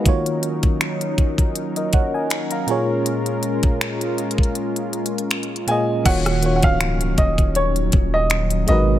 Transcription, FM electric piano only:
0, 0, Header, 1, 2, 480
1, 0, Start_track
1, 0, Key_signature, -6, "minor"
1, 0, Tempo, 750000
1, 36, Time_signature, 4, 2, 24, 8
1, 5754, End_track
2, 0, Start_track
2, 0, Title_t, "FM electric piano"
2, 0, Program_c, 0, 5
2, 0, Control_c, 0, 64, 127
2, 24, Note_on_c, 0, 51, 83
2, 32, Note_on_c, 0, 58, 81
2, 40, Note_on_c, 0, 65, 77
2, 45, Control_c, 0, 64, 0
2, 47, Note_on_c, 0, 66, 77
2, 54, Note_on_c, 0, 73, 96
2, 155, Control_c, 0, 64, 127
2, 711, Note_off_c, 0, 51, 0
2, 715, Note_off_c, 0, 58, 0
2, 719, Note_off_c, 0, 65, 0
2, 723, Note_off_c, 0, 66, 0
2, 726, Note_off_c, 0, 73, 0
2, 1131, Note_on_c, 0, 75, 58
2, 1136, Note_on_c, 0, 70, 48
2, 1234, Note_off_c, 0, 75, 0
2, 1236, Note_off_c, 0, 70, 0
2, 1240, Note_on_c, 0, 78, 65
2, 1245, Note_on_c, 0, 73, 54
2, 1362, Note_off_c, 0, 78, 0
2, 1364, Note_off_c, 0, 73, 0
2, 1372, Note_on_c, 0, 80, 67
2, 1376, Note_on_c, 0, 75, 53
2, 1597, Note_off_c, 0, 80, 0
2, 1599, Note_off_c, 0, 75, 0
2, 1610, Note_on_c, 0, 82, 58
2, 1614, Note_on_c, 0, 77, 51
2, 1706, Note_on_c, 0, 46, 86
2, 1713, Note_on_c, 0, 58, 77
2, 1721, Note_on_c, 0, 65, 76
2, 1725, Control_c, 0, 64, 0
2, 1728, Note_on_c, 0, 68, 79
2, 1736, Note_on_c, 0, 73, 95
2, 1836, Note_off_c, 0, 82, 0
2, 1838, Note_off_c, 0, 77, 0
2, 1844, Control_c, 0, 64, 127
2, 2483, Note_off_c, 0, 46, 0
2, 2486, Note_off_c, 0, 58, 0
2, 2490, Note_off_c, 0, 65, 0
2, 2494, Note_off_c, 0, 68, 0
2, 2498, Note_off_c, 0, 73, 0
2, 3626, Note_on_c, 0, 46, 80
2, 3634, Note_on_c, 0, 58, 77
2, 3641, Note_on_c, 0, 65, 74
2, 3648, Note_on_c, 0, 68, 74
2, 3656, Note_on_c, 0, 75, 92
2, 3806, Note_off_c, 0, 46, 0
2, 3810, Note_off_c, 0, 58, 0
2, 3814, Note_off_c, 0, 65, 0
2, 3817, Note_off_c, 0, 68, 0
2, 3821, Note_off_c, 0, 75, 0
2, 3864, Note_on_c, 0, 51, 72
2, 3871, Note_on_c, 0, 58, 65
2, 3879, Note_on_c, 0, 65, 65
2, 3884, Control_c, 0, 64, 0
2, 3888, Note_on_c, 0, 66, 66
2, 3895, Note_on_c, 0, 73, 80
2, 4006, Control_c, 0, 64, 127
2, 4045, Note_off_c, 0, 51, 0
2, 4049, Note_off_c, 0, 58, 0
2, 4053, Note_off_c, 0, 65, 0
2, 4057, Note_off_c, 0, 66, 0
2, 4060, Note_off_c, 0, 73, 0
2, 4105, Note_on_c, 0, 51, 68
2, 4112, Note_on_c, 0, 58, 61
2, 4120, Note_on_c, 0, 65, 64
2, 4127, Note_on_c, 0, 66, 68
2, 4133, Note_on_c, 0, 73, 75
2, 4791, Note_off_c, 0, 51, 0
2, 4795, Note_off_c, 0, 58, 0
2, 4799, Note_off_c, 0, 65, 0
2, 4803, Note_off_c, 0, 66, 0
2, 4806, Note_off_c, 0, 73, 0
2, 5547, Note_on_c, 0, 56, 77
2, 5554, Note_on_c, 0, 63, 70
2, 5561, Note_on_c, 0, 66, 73
2, 5565, Control_c, 0, 64, 0
2, 5569, Note_on_c, 0, 70, 68
2, 5577, Note_on_c, 0, 71, 82
2, 5683, Control_c, 0, 64, 127
2, 5754, Note_off_c, 0, 56, 0
2, 5754, Note_off_c, 0, 63, 0
2, 5754, Note_off_c, 0, 66, 0
2, 5754, Note_off_c, 0, 70, 0
2, 5754, Note_off_c, 0, 71, 0
2, 5754, End_track
0, 0, End_of_file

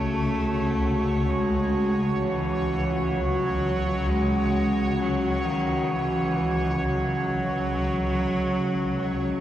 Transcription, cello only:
0, 0, Header, 1, 2, 480
1, 0, Start_track
1, 0, Tempo, 500000
1, 9028, End_track
2, 0, Start_track
2, 0, Title_t, "Cello"
2, 0, Program_c, 0, 42
2, 0, Note_on_c, 0, 57, 101
2, 1246, Note_on_c, 0, 56, 94
2, 1260, Note_off_c, 0, 57, 0
2, 2125, Note_on_c, 0, 52, 81
2, 2139, Note_off_c, 0, 56, 0
2, 3020, Note_on_c, 0, 54, 95
2, 3035, Note_off_c, 0, 52, 0
2, 3919, Note_on_c, 0, 56, 90
2, 3933, Note_off_c, 0, 54, 0
2, 4792, Note_off_c, 0, 56, 0
2, 4798, Note_on_c, 0, 54, 84
2, 5235, Note_on_c, 0, 51, 79
2, 5249, Note_off_c, 0, 54, 0
2, 5681, Note_on_c, 0, 52, 79
2, 5696, Note_off_c, 0, 51, 0
2, 6567, Note_on_c, 0, 54, 86
2, 6582, Note_off_c, 0, 52, 0
2, 9028, Note_off_c, 0, 54, 0
2, 9028, End_track
0, 0, End_of_file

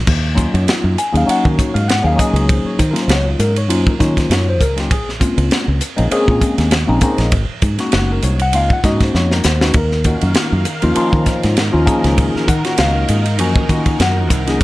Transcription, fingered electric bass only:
0, 0, Header, 1, 3, 480
1, 0, Start_track
1, 0, Tempo, 605449
1, 59, Time_signature, 4, 2, 24, 8
1, 11604, End_track
2, 0, Start_track
2, 0, Title_t, "Fingered electric bass"
2, 0, Program_c, 0, 33
2, 60, Note_on_c, 0, 39, 81
2, 372, Note_off_c, 0, 39, 0
2, 429, Note_on_c, 0, 42, 80
2, 520, Note_off_c, 0, 42, 0
2, 665, Note_on_c, 0, 42, 76
2, 758, Note_off_c, 0, 42, 0
2, 905, Note_on_c, 0, 39, 78
2, 997, Note_off_c, 0, 39, 0
2, 1150, Note_on_c, 0, 51, 77
2, 1240, Note_off_c, 0, 51, 0
2, 1387, Note_on_c, 0, 44, 80
2, 1589, Note_off_c, 0, 44, 0
2, 1619, Note_on_c, 0, 39, 83
2, 1713, Note_off_c, 0, 39, 0
2, 1851, Note_on_c, 0, 37, 86
2, 2060, Note_off_c, 0, 37, 0
2, 2210, Note_on_c, 0, 51, 83
2, 2323, Note_off_c, 0, 51, 0
2, 2440, Note_on_c, 0, 37, 78
2, 2648, Note_off_c, 0, 37, 0
2, 2690, Note_on_c, 0, 44, 77
2, 2931, Note_off_c, 0, 44, 0
2, 2931, Note_on_c, 0, 42, 87
2, 3043, Note_off_c, 0, 42, 0
2, 3175, Note_on_c, 0, 51, 82
2, 3376, Note_off_c, 0, 51, 0
2, 3406, Note_on_c, 0, 42, 80
2, 3654, Note_off_c, 0, 42, 0
2, 3654, Note_on_c, 0, 37, 87
2, 3890, Note_off_c, 0, 37, 0
2, 3890, Note_on_c, 0, 34, 83
2, 4204, Note_off_c, 0, 34, 0
2, 4263, Note_on_c, 0, 37, 81
2, 4354, Note_off_c, 0, 37, 0
2, 4503, Note_on_c, 0, 37, 80
2, 4594, Note_off_c, 0, 37, 0
2, 4747, Note_on_c, 0, 34, 82
2, 4837, Note_off_c, 0, 34, 0
2, 4977, Note_on_c, 0, 46, 80
2, 5071, Note_off_c, 0, 46, 0
2, 5219, Note_on_c, 0, 39, 82
2, 5423, Note_off_c, 0, 39, 0
2, 5461, Note_on_c, 0, 34, 88
2, 5553, Note_off_c, 0, 34, 0
2, 5696, Note_on_c, 0, 34, 89
2, 5790, Note_off_c, 0, 34, 0
2, 5800, Note_on_c, 0, 32, 92
2, 5916, Note_off_c, 0, 32, 0
2, 6044, Note_on_c, 0, 44, 87
2, 6158, Note_off_c, 0, 44, 0
2, 6288, Note_on_c, 0, 30, 80
2, 6492, Note_off_c, 0, 30, 0
2, 6527, Note_on_c, 0, 36, 83
2, 6768, Note_off_c, 0, 36, 0
2, 6768, Note_on_c, 0, 37, 89
2, 6880, Note_off_c, 0, 37, 0
2, 7008, Note_on_c, 0, 44, 76
2, 7212, Note_off_c, 0, 44, 0
2, 7250, Note_on_c, 0, 41, 77
2, 7467, Note_off_c, 0, 41, 0
2, 7491, Note_on_c, 0, 39, 81
2, 7722, Note_off_c, 0, 39, 0
2, 7725, Note_on_c, 0, 39, 85
2, 8041, Note_off_c, 0, 39, 0
2, 8107, Note_on_c, 0, 42, 80
2, 8197, Note_off_c, 0, 42, 0
2, 8343, Note_on_c, 0, 42, 79
2, 8435, Note_off_c, 0, 42, 0
2, 8590, Note_on_c, 0, 39, 82
2, 8679, Note_off_c, 0, 39, 0
2, 8820, Note_on_c, 0, 51, 78
2, 8914, Note_off_c, 0, 51, 0
2, 9071, Note_on_c, 0, 44, 84
2, 9271, Note_off_c, 0, 44, 0
2, 9307, Note_on_c, 0, 39, 88
2, 9398, Note_off_c, 0, 39, 0
2, 9548, Note_on_c, 0, 37, 87
2, 9750, Note_off_c, 0, 37, 0
2, 9891, Note_on_c, 0, 51, 82
2, 10005, Note_off_c, 0, 51, 0
2, 10136, Note_on_c, 0, 37, 80
2, 10339, Note_off_c, 0, 37, 0
2, 10379, Note_on_c, 0, 44, 75
2, 10618, Note_off_c, 0, 44, 0
2, 10618, Note_on_c, 0, 42, 91
2, 10730, Note_off_c, 0, 42, 0
2, 10854, Note_on_c, 0, 51, 84
2, 11059, Note_off_c, 0, 51, 0
2, 11097, Note_on_c, 0, 42, 87
2, 11340, Note_off_c, 0, 42, 0
2, 11340, Note_on_c, 0, 36, 90
2, 11581, Note_off_c, 0, 36, 0
2, 11604, End_track
3, 0, Start_track
3, 0, Title_t, "Muted fingered electric bass strokes"
3, 1015, Note_on_c, 9, 29, 34
3, 1094, Note_off_c, 9, 29, 0
3, 2099, Note_on_c, 9, 29, 33
3, 2178, Note_off_c, 9, 29, 0
3, 3063, Note_on_c, 9, 29, 34
3, 3142, Note_off_c, 9, 29, 0
3, 4849, Note_on_c, 9, 29, 36
3, 4929, Note_off_c, 9, 29, 0
3, 8698, Note_on_c, 9, 29, 38
3, 8777, Note_off_c, 9, 29, 0
3, 9791, Note_on_c, 9, 29, 36
3, 9871, Note_off_c, 9, 29, 0
3, 10745, Note_on_c, 9, 29, 35
3, 10825, Note_off_c, 9, 29, 0
3, 11604, End_track
0, 0, End_of_file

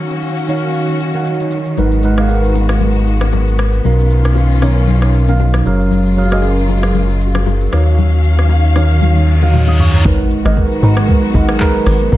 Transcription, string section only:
0, 0, Header, 1, 2, 480
1, 0, Start_track
1, 0, Tempo, 517241
1, 1648, Time_signature, 4, 2, 24, 8
1, 11294, End_track
2, 0, Start_track
2, 0, Title_t, "String section"
2, 0, Program_c, 0, 48
2, 0, Note_on_c, 0, 51, 81
2, 0, Note_on_c, 0, 54, 70
2, 0, Note_on_c, 0, 61, 73
2, 0, Note_on_c, 0, 66, 88
2, 1611, Note_off_c, 0, 54, 0
2, 1626, Note_off_c, 0, 61, 0
2, 1626, Note_off_c, 0, 66, 0
2, 1649, Note_on_c, 0, 59, 74
2, 1649, Note_on_c, 0, 66, 83
2, 1651, Note_on_c, 0, 56, 74
2, 3530, Note_off_c, 0, 51, 0
2, 3549, Note_off_c, 0, 66, 0
2, 3550, Note_off_c, 0, 56, 0
2, 3570, Note_on_c, 0, 51, 80
2, 3571, Note_on_c, 0, 65, 88
2, 3572, Note_on_c, 0, 61, 74
2, 5213, Note_off_c, 0, 59, 0
2, 5232, Note_off_c, 0, 51, 0
2, 5232, Note_off_c, 0, 65, 0
2, 5233, Note_off_c, 0, 61, 0
2, 5251, Note_on_c, 0, 65, 89
2, 5252, Note_on_c, 0, 49, 80
2, 5253, Note_on_c, 0, 54, 69
2, 5253, Note_on_c, 0, 56, 73
2, 7150, Note_off_c, 0, 65, 0
2, 7151, Note_off_c, 0, 49, 0
2, 7151, Note_off_c, 0, 56, 0
2, 7166, Note_on_c, 0, 51, 81
2, 7167, Note_on_c, 0, 61, 77
2, 7167, Note_on_c, 0, 77, 85
2, 9293, Note_off_c, 0, 54, 0
2, 9305, Note_off_c, 0, 51, 0
2, 9306, Note_off_c, 0, 61, 0
2, 9306, Note_off_c, 0, 77, 0
2, 9329, Note_on_c, 0, 54, 78
2, 9330, Note_on_c, 0, 56, 77
2, 9331, Note_on_c, 0, 51, 83
2, 9331, Note_on_c, 0, 59, 77
2, 9331, Note_on_c, 0, 66, 97
2, 11230, Note_off_c, 0, 51, 0
2, 11230, Note_off_c, 0, 56, 0
2, 11230, Note_off_c, 0, 66, 0
2, 11247, Note_on_c, 0, 51, 86
2, 11247, Note_on_c, 0, 61, 79
2, 11247, Note_on_c, 0, 65, 97
2, 11294, Note_off_c, 0, 51, 0
2, 11294, Note_off_c, 0, 54, 0
2, 11294, Note_off_c, 0, 59, 0
2, 11294, Note_off_c, 0, 61, 0
2, 11294, Note_off_c, 0, 65, 0
2, 11294, End_track
0, 0, End_of_file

